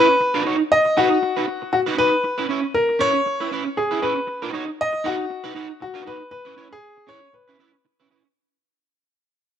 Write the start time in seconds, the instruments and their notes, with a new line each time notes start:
Already playing: clean electric guitar C#4, grand piano B4
0.09 muted clean electric guitar stroke
0.20 muted clean electric guitar stroke
0.34 clean electric guitar D#4 F#4 B4
0.45 clean electric guitar D#4 F#4 C#5
0.59 muted clean electric guitar stroke
0.72 grand piano D#5
0.85 muted clean electric guitar stroke
0.97 clean electric guitar D#4 F#4 B4, grand piano F#4
1.11 muted clean electric guitar stroke
1.22 muted clean electric guitar stroke
1.37 clean electric guitar D#4 F#4 B4
1.47 muted clean electric guitar stroke
1.62 muted clean electric guitar stroke
1.73 grand piano F#4, muted clean electric guitar stroke
1.86 clean electric guitar D#4 F#4 B4
1.97 clean electric guitar D#4 F#4 B4, grand piano B4
2.12 muted clean electric guitar stroke
2.23 muted clean electric guitar stroke
2.38 clean electric guitar C#4 E4 B4
2.49 clean electric guitar C#4 E4 C#5
2.63 muted clean electric guitar stroke
2.74 grand piano A#4
2.89 muted clean electric guitar stroke
2.99 clean electric guitar C#4 E4 B4, grand piano C#5
3.14 muted clean electric guitar stroke
3.26 muted clean electric guitar stroke
3.40 clean electric guitar C#4 E4 B4
3.51 clean electric guitar C#4 E4 B4
3.66 muted clean electric guitar stroke
3.77 grand piano G#4, muted clean electric guitar stroke
3.91 clean electric guitar C#4 E4 B4
4.02 clean electric guitar C#4 E4 B4, grand piano B4
4.16 muted clean electric guitar stroke
4.27 muted clean electric guitar stroke
4.42 clean electric guitar D#4 F#4 B4
4.53 clean electric guitar D#4 F#4 C#5
4.67 muted clean electric guitar stroke
4.81 grand piano D#5
4.93 muted clean electric guitar stroke
5.04 clean electric guitar D#4 F#4 B4, grand piano F#4
5.18 muted clean electric guitar stroke
5.30 muted clean electric guitar stroke
5.44 clean electric guitar D#4 F#4 B4
5.55 clean electric guitar D#4 F#4 B4
5.70 muted clean electric guitar stroke
5.80 grand piano F#4, muted clean electric guitar stroke
5.94 clean electric guitar D#4 F#4 B4
6.05 clean electric guitar D#4 F#4 B4, grand piano B4
6.20 muted clean electric guitar stroke
6.31 grand piano B4, muted clean electric guitar stroke
6.45 clean electric guitar C#4 E4 B4
6.56 clean electric guitar C#4 E4 C#5
6.71 grand piano G#4, muted clean electric guitar stroke
6.97 muted clean electric guitar stroke
7.07 clean electric guitar C#4 E4 B4, grand piano C#5
7.22 muted clean electric guitar stroke
7.33 grand piano B4, muted clean electric guitar stroke
7.48 clean electric guitar C#4 E4 B4
7.59 clean electric guitar C#4 E4 B4
7.73 muted clean electric guitar stroke
7.85 muted clean electric guitar stroke
8.00 clean electric guitar C#4 E4 B4
8.10 clean electric guitar C#4 E4 B4
8.25 muted clean electric guitar stroke